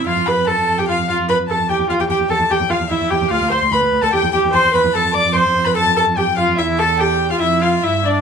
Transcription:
<<
  \new Staff \with { instrumentName = "Violin" } { \time 4/4 \key f \lydian \tempo 4 = 147 f''8 b''8 a''8. g''16 f''8 f''8 b''8 a''8 | g''8 f''16 g''16 g''8 a''8 g''8 f''8 e''8 g''8 | f''8 c'''8 b''8. a''16 g''8 g''8 c'''8 b''8 | a''8 d'''8 c'''8. b''16 a''8 a''8 g''8 f''8 |
e''8 a''8 g''8. f''16 e''8 f''8 e''8 d''8 | }
  \new Staff \with { instrumentName = "Violin" } { \time 4/4 \key f \lydian f''8 b''8 a''8. g''16 f''8 f''8 b''8 a''8 | g''8 f''16 g''16 g''8 a''8 g''8 f''8 e''8 g''8 | f''8 c'''8 b''8. a''16 g''8 g''8 c'''8 b''8 | a''8 d'''8 c'''8. b''16 a''8 a''8 g''8 f''8 |
e''8 a''8 g''8. f''16 e''8 f''8 e''8 d''8 | }
  \new Staff \with { instrumentName = "Viola" } { \time 4/4 \key f \lydian f'8 b'8 a'8. g'16 f'8 f'8 b'8 a'8 | g'8 f'16 g'16 g'8 a'8 g'8 f'8 e'8 g'8 | f'8 c''8 b'8. a'16 g'8 g'8 c''8 b'8 | a'8 d''8 c''8. b'16 a'8 a'8 g'8 f'8 |
e'8 a'8 g'8. f'16 e'8 f'8 e'8 d'8 | }
  \new Staff \with { instrumentName = "Cello" } { \clef bass \time 4/4 \key f \lydian f,16 f,16 f,16 f,16 f,16 f,16 f,16 f,16 f,16 f,16 f,16 f,16 f,16 f,16 f,16 f,16 | e,16 e,16 e,16 e,16 e,16 e,16 e,16 e,16 e,16 e,16 e,16 e,16 e,16 e,16 e,16 e,16 | d,16 d,16 d,16 d,16 d,16 d,16 d,16 d,16 e,16 e,16 e,16 e,16 e,16 e,16 e,16 e,16 | f,16 f,16 f,16 f,16 f,16 f,16 f,16 f,16 f,16 f,16 f,16 f,16 f,16 f,16 f,16 f,16 |
e,2 f,4 g,4 | }
>>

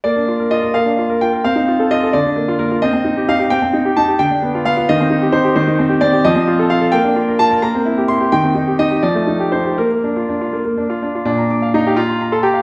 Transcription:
\new Staff \with { instrumentName = "Grand piano" } { \time 6/8 \key bes \major \tempo 4. = 87 << { d''4 ees''8 f''4 g''8 | f''4 ees''8 d''4 bes'8 | ees''4 f''8 g''4 a''8 | g''4 f''8 ees''4 c''8 |
c''4 d''8 ees''4 f''8 | g''4 a''8 bes''4 c'''8 | g''4 ees''8 d''4 c''8 | bes'4. r4. |
d'4 ees'16 g'16 f'8. a'16 g'8 | } \\ { bes16 d'16 f'16 bes'16 f'16 bes'16 bes16 d'16 f'16 bes'16 f'16 bes'16 | c'16 ees'16 f'16 a'16 f'16 a'16 d16 d'16 bes16 f'16 bes16 f'16 | c'16 c'16 ees'16 g'16 ees'16 g'16 c'16 c'16 ees'16 g'16 ees'16 g'16 | d16 d'16 b16 f'16 b16 f'16 ees16 c'16 ees'16 g'16 ees'16 g'16 |
ees16 ees'16 c'16 g'16 c'16 g'16 f16 c'16 f'16 a'16 f'16 a'16 | bes16 d'16 f'16 bes'16 f'16 bes'16 bes16 c'16 e'16 g'16 e'16 g'16 | ees16 c'16 ees'16 g'16 ees'16 g'16 f16 a16 ees'16 g'16 ees'16 g'16 | bes16 bes16 d'16 f'16 d'16 f'16 bes16 bes16 d'16 f'16 d'16 f'16 |
bes,16 bes''16 d'''16 f''16 bes''16 f''16 bes''16 c'''16 bes''16 c'''16 bes''16 f''16 | } >> }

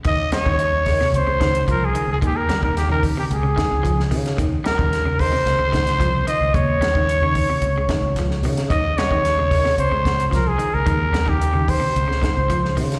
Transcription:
<<
  \new Staff \with { instrumentName = "Trumpet" } { \time 4/4 \key ees \mixolydian \tempo 4 = 111 ees''8 des''4. c''4 bes'16 aes'8 aes'16 | g'16 bes'8 bes'16 g'16 bes'8 g'16 aes'4. r8 | r8 bes'4 c''2 ees''8 | des''2. r4 |
ees''8 des''4. c''4 bes'16 aes'8 bes'16~ | bes'8. g'8. c''2 r8 | }
  \new Staff \with { instrumentName = "Clean electric guitar" } { \clef bass \time 4/4 \key ees \mixolydian ees8 g16 ees8 r8 c8 des16 ees8 f8 ees8 | ees8 g16 ees8 des8 c8 des16 ees8 f8 ees8 | ees8 g16 ees8 des8 c8 des16 ees8 f8 ees8 | des8 g16 ees8 des8 c8 des16 ees8 f8 ees8 |
ees8 g16 ees8 des8 c8 des16 r8 f8 ees8 | ees8 g16 ees8 des8 c8 des16 ees8 f8 ees8 | }
  \new Staff \with { instrumentName = "Fingered electric bass" } { \clef bass \time 4/4 \key ees \mixolydian ees,16 r8 ees,8. ees16 r16 des,16 des,8. c,8 r16 des,16 | ees,8 ees,8. ees8 r16 des,8 r16 des,8. des8 | ees,16 r8 ees,8. ees16 r16 des,16 des,8. c,8 r16 des,16 | ees,8 ees,8. ees8 r16 des,8 r16 des,8. des8 |
ees,16 r8 ees,8. ees16 r16 des,16 des,8. c,8 r16 des,16 | ees,8 ees,8. ees8 r16 des,8 r16 des,8. des8 | }
  \new DrumStaff \with { instrumentName = "Drums" } \drummode { \time 4/4 <hh bd>8 <hh sn>16 bd16 hh8 <hho bd sn>16 sn16 hh8 <hh bd sn>16 hh16 <hh bd>8 hh8 | <hh bd>8 <hh sn>16 bd16 <hh sn>8 <hho bd>8 hh8 <hh bd sn>8 <hh bd>16 sn16 hho16 <hh sn>16 | <hh bd>8 <hh sn>16 bd16 <hh sn>8 <hho bd>8 <hh sn>8 <hh bd sn>16 <hh sn>16 <hh bd>8 hh8 | <hh bd>8 <hh sn>16 bd16 hh8 <hho bd>8 hh8 <hh bd sn>8 <hh bd sn>16 sn16 hho16 <hh sn>16 |
<hh bd>8 <hh sn>16 bd16 <hh sn>8 <hho bd sn>16 sn16 hh8 <hh bd sn>16 hh16 <hh bd sn>8 hh8 | <hh bd>8 <hh sn>16 bd16 hh8 <hho bd>8 hh16 sn16 <hh bd sn>8 <hh bd>16 sn16 hho16 <hh sn>16 | }
>>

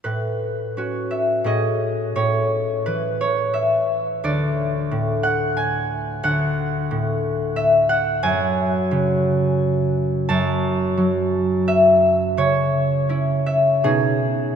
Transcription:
<<
  \new Staff \with { instrumentName = "Harp" } { \time 3/4 \key a \major \tempo 4 = 88 b'4. e''8 dis''4 | cis''4 b'8 cis''8 e''4 | d''4. fis''8 gis''4 | fis''2 e''8 fis''8 |
gis''2. | a''2 e''4 | cis''4. e''8 gis'4 | }
  \new Staff \with { instrumentName = "Harp" } { \clef bass \time 3/4 \key a \major a,4 <cis' fis'>4 <a, cis' gis'>4 | a,4 e2 | d,4 a,2 | d,4 a,2 |
fis,4 cis2 | fis,4 fis2 | cis4 <cis' e'>4 <b, cis' dis'>4 | }
>>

